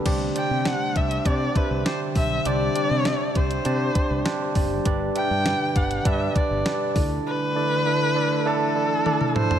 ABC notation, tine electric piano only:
X:1
M:4/4
L:1/8
Q:1/4=100
K:Clyd
V:1 name="Tine electric piano"
[DGcd] [DGcd] [DGcd] [DGcd] [DGcd] [DGce] [DGcd] [DGce] | [DGcd] [DGcd] [DGce] [DGcd] [DGcd] [DGd] [DGcd] [DGcd] | [DGBd] [DGBe] [DGBd] [DGBd] [DGBd] [DGBd] [DGBd] [DEAd]- | [DEAd] [DEAd] [DEAe] [DEAd] [DEAd] [DEAd] [DEAd] [DEAc] |]
V:2 name="Tine electric piano" clef=bass
C,3 z4 z | C,3 z4 z | G,,3 z4 D,- | D,2 z6 |]